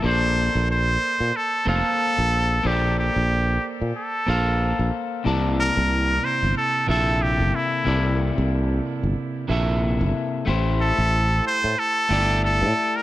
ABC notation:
X:1
M:4/4
L:1/16
Q:"Swing 16ths" 1/4=92
K:Cmix
V:1 name="Muted trumpet"
c4 c4 A2 A6 | G2 G4 z2 A6 z2 | z2 B4 c2 A2 A2 G2 E2- | E2 z12 z2 |
z2 A4 c2 A4 A3 B |]
V:2 name="Clean electric guitar"
[B,Acd]8- [B,Acd]2 [B,Acf]6 | [B,Acd]8- [B,Acd]2 [B,Acf]6 | [C,B,Eda]8- [C,B,Eda]2 [C,B,EAe]6 | [C,B,EAd]8- [C,B,EAd]2 [C,B,EAe]6 |
[A,EGc]8- [A,EGc]2 [A,EGd]6 |]
V:3 name="Fretless electric bass" clef=bass
B,,,3 B,,,3 z B,, z2 F,,, z2 B,,,3 | B,,,3 B,,,3 z B,, z2 B,,,3 B,,, z2 | C,,3 C,,3 z G,,, z2 B,,,3 G,,, z2 | C,,3 C,,3 z G,,, z2 B,,,3 G,,, z2 |
A,,,3 A,,,3 z A,, z2 G,,,3 A,, z2 |]